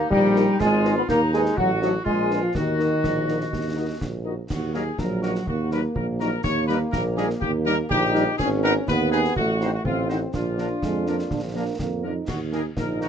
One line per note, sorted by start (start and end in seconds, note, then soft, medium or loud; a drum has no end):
0.10 0.49 A#1 medium
0.10 0.56 G3 loud
0.10 0.56 D#4 medium
0.10 0.56 G5 medium
0.10 concert bass drum medium
0.35 0.44 D#4 medium
0.35 0.44 G4 medium
0.35 0.44 A#4 medium
0.35 0.44 D#5 medium
0.35 snare medium
0.59 1.01 G#1 medium
0.59 0.94 G#3 medium
0.59 1.08 F4 medium
0.59 0.93 G#5 medium
0.59 concert bass drum medium
0.59 snare medium
0.59 crash soft
0.84 0.93 D#4 medium
0.84 0.93 G#4 medium
0.84 0.93 B4 medium
0.84 0.94 D#5 medium
0.84 snare medium
0.96 1.02 B3 medium
0.96 1.02 B5 medium
1.08 1.49 D#2 medium
1.08 1.19 A#3 loud
1.08 1.54 D#4 medium
1.08 1.32 A#5 medium
1.08 concert bass drum medium
1.08 snare medium
1.32 1.56 G#3 medium
1.32 1.42 D#4 medium
1.32 1.42 G#4 medium
1.32 1.42 B4 medium
1.32 1.42 D#5 medium
1.32 1.38 G#5 medium
1.32 snare medium
1.46 snare soft
1.56 1.98 A1 medium
1.56 1.69 F#3 medium
1.56 2.06 F#4 medium
1.56 1.79 F#5 medium
1.56 concert bass drum medium
1.81 1.93 F#3 medium
1.81 1.90 D#4 medium
1.81 1.91 A4 medium
1.81 1.91 C5 medium
1.81 1.91 D#5 medium
1.81 1.87 F#5 medium
1.81 snare soft
2.04 2.47 A#1 medium
2.04 2.40 G#3 medium
2.04 2.50 F4 medium
2.04 2.39 G#5 medium
2.04 concert bass drum medium
2.30 2.40 D4 medium
2.30 2.40 F4 medium
2.30 2.40 B4 medium
2.30 2.39 F5 soft
2.30 snare medium
2.42 2.49 F3 medium
2.42 2.54 F5 medium
2.54 2.96 D#2 medium
2.54 3.97 D#3 medium
2.54 4.22 F#4 medium
2.54 3.97 D#5 medium
2.54 concert bass drum medium
2.54 snare medium
2.79 2.88 D#4 soft
2.79 2.88 F#4 soft
2.79 2.88 A#4 soft
2.79 2.88 D#5 soft
2.79 snare soft
3.04 3.44 A#1 medium
3.04 concert bass drum medium
3.04 snare medium
3.27 3.36 D#4 soft
3.27 3.36 F#4 soft
3.27 3.37 A#4 soft
3.27 3.37 D#5 soft
3.27 snare soft
3.41 snare soft
3.52 3.93 D#2 medium
3.52 concert bass drum medium
3.52 snare medium
3.76 3.85 D#4 soft
3.76 3.85 F#4 soft
3.76 3.85 A#4 soft
3.76 3.85 D#5 soft
4.01 4.42 A#1 medium
4.01 concert bass drum medium
4.01 snare medium
4.25 4.34 D#4 soft
4.25 4.34 F#4 soft
4.25 4.34 A#4 soft
4.25 4.34 D#5 soft
4.50 4.91 D#2 medium
4.50 4.73 F#4 medium
4.50 concert bass drum medium
4.50 snare medium
4.50 crash soft
4.74 4.83 F#3 soft
4.74 4.83 A#3 soft
4.74 4.83 D#4 soft
4.74 4.83 F#4 soft
4.74 4.97 G#4 medium
4.74 4.83 A#4 medium
4.74 snare soft
4.98 5.39 A#1 medium
4.98 5.44 F#3 medium
4.98 5.23 A#4 medium
4.98 concert bass drum medium
4.98 snare medium
5.22 5.32 F#3 soft
5.22 5.32 A#3 soft
5.22 5.32 D#4 medium
5.22 5.31 F#4 medium
5.22 5.46 F#4 medium
5.22 5.31 A#4 medium
5.22 snare medium
5.35 snare soft
5.46 5.88 D#2 medium
5.46 6.43 A#3 medium
5.46 5.70 F#4 medium
5.46 concert bass drum medium
5.71 5.80 F#3 medium
5.71 5.81 A#3 medium
5.71 5.80 D#4 medium
5.71 5.80 F#4 medium
5.71 5.80 A#4 medium
5.71 5.83 B4 medium
5.71 snare soft
5.95 6.36 A#1 medium
5.95 6.07 A#4 medium
5.95 concert bass drum medium
6.19 6.29 F#3 medium
6.19 6.29 A#3 medium
6.19 6.29 D#4 medium
6.19 6.29 F#4 medium
6.19 6.42 A#4 medium
6.19 6.29 A#4 medium
6.19 snare medium
6.43 6.85 D#2 medium
6.43 7.86 A#3 medium
6.43 6.67 C#5 medium
6.43 concert bass drum medium
6.43 snare medium
6.67 6.77 G3 medium
6.67 6.78 A#3 medium
6.67 6.77 D#4 medium
6.67 6.78 G4 medium
6.67 6.78 A#4 medium
6.67 6.79 B4 medium
6.67 snare medium
6.92 7.34 A#1 medium
6.92 7.03 A#4 medium
6.92 concert bass drum medium
6.92 snare medium
7.17 7.26 G3 medium
7.17 7.26 A#3 medium
7.17 7.26 D#4 medium
7.17 7.27 G4 medium
7.17 7.28 G#4 medium
7.17 7.27 A#4 medium
7.17 snare medium
7.30 snare medium
7.40 7.83 D#2 medium
7.40 7.52 G4 loud
7.40 concert bass drum medium
7.65 7.74 G3 medium
7.65 7.75 A#3 medium
7.65 7.75 D#4 medium
7.65 7.76 G4 medium
7.65 7.76 A#4 loud
7.65 7.75 A#4 medium
7.65 snare medium
7.89 8.27 A#1 medium
7.89 8.36 D#4 medium
7.89 8.35 G4 loud
7.89 concert bass drum medium
8.15 8.24 G3 medium
8.15 8.24 A#3 medium
8.15 8.23 D#4 medium
8.15 8.24 G4 medium
8.15 8.24 A#4 medium
8.15 snare medium
8.38 8.80 G#1 medium
8.38 8.85 C#4 medium
8.38 8.49 G#4 loud
8.38 concert bass drum medium
8.38 snare medium
8.38 crash soft
8.63 8.72 D#3 medium
8.63 8.72 B3 medium
8.63 8.72 D#4 medium
8.63 8.74 A#4 loud
8.63 8.73 B4 medium
8.63 snare medium
8.88 9.28 D#2 medium
8.88 9.34 B3 medium
8.88 9.10 B4 loud
8.88 concert bass drum medium
8.88 snare medium
9.11 9.20 D#3 medium
9.11 9.20 B3 medium
9.11 9.20 D#4 medium
9.11 9.21 D#4 medium
9.11 9.34 G#4 loud
9.11 9.21 B4 medium
9.11 snare medium
9.25 snare medium
9.35 9.77 A1 medium
9.35 9.82 A3 medium
9.35 9.70 F#4 loud
9.35 concert bass drum medium
9.60 9.69 D#3 medium
9.60 9.69 C4 medium
9.60 9.69 D#4 medium
9.60 9.70 D#4 medium
9.60 9.70 C5 medium
9.60 snare soft
9.73 9.84 F#4 medium
9.84 10.25 A1 medium
9.84 10.30 C4 medium
9.84 10.08 F4 medium
9.84 concert bass drum medium
10.09 10.18 D#3 soft
10.09 10.18 C4 medium
10.09 10.18 D#4 medium
10.09 10.20 F#4 medium
10.09 10.18 C5 medium
10.09 snare soft
10.33 10.74 A#1 medium
10.33 12.04 D4 medium
10.33 11.76 F4 medium
10.33 concert bass drum medium
10.33 snare medium
10.57 10.66 F3 medium
10.57 10.66 A#3 soft
10.57 10.66 D4 soft
10.57 10.68 D4 soft
10.57 10.68 A#4 soft
10.57 snare soft
10.82 11.23 F2 medium
10.82 11.08 G#3 medium
10.82 concert bass drum medium
10.82 snare medium
11.06 11.15 F3 soft
11.06 11.15 A#3 soft
11.06 11.30 A#3 soft
11.06 11.15 D4 soft
11.06 11.16 D4 soft
11.06 11.16 A#4 soft
11.06 snare medium
11.19 snare medium
11.30 11.71 A#1 medium
11.30 11.42 D4 medium
11.30 concert bass drum medium
11.30 snare medium
11.54 11.63 F3 soft
11.54 11.63 A#3 soft
11.54 11.78 A#3 medium
11.54 11.63 D4 soft
11.54 11.64 D4 soft
11.54 11.64 A#4 soft
11.79 12.20 F2 medium
11.79 12.06 A#3 medium
11.79 concert bass drum medium
11.79 snare medium
12.02 12.12 F3 soft
12.02 12.12 A#3 soft
12.02 12.12 D4 soft
12.02 12.13 D4 soft
12.02 12.29 D#4 medium
12.02 12.13 A#4 soft
12.28 12.69 D#2 medium
12.28 12.39 F#4 medium
12.28 concert bass drum medium
12.28 snare medium
12.28 crash soft
12.52 12.61 D#3 medium
12.52 12.61 A#3 soft
12.52 12.61 D#4 soft
12.52 12.64 G#4 medium
12.52 12.62 A#4 medium
12.52 snare soft
12.77 13.09 A#1 medium
12.77 13.09 D#4 medium
12.77 13.00 A#4 medium
12.77 concert bass drum medium
12.77 snare medium
13.00 13.09 D#3 medium
13.00 13.09 A#3 medium
13.00 13.09 D#4 medium
13.00 13.09 F#4 medium
13.00 13.09 A#4 medium
13.00 snare medium